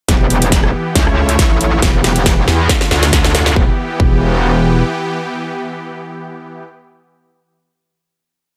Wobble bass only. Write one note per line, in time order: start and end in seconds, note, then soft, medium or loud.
0.09 0.72 E1 loud
0.95 1.37 C#2 loud
1.39 1.81 A1 medium
1.82 2.46 E1 loud
2.48 2.68 E2 medium
2.91 3.11 D2 medium
3.13 3.55 D2 loud
3.56 3.69 E1 loud
4.00 4.83 E1 loud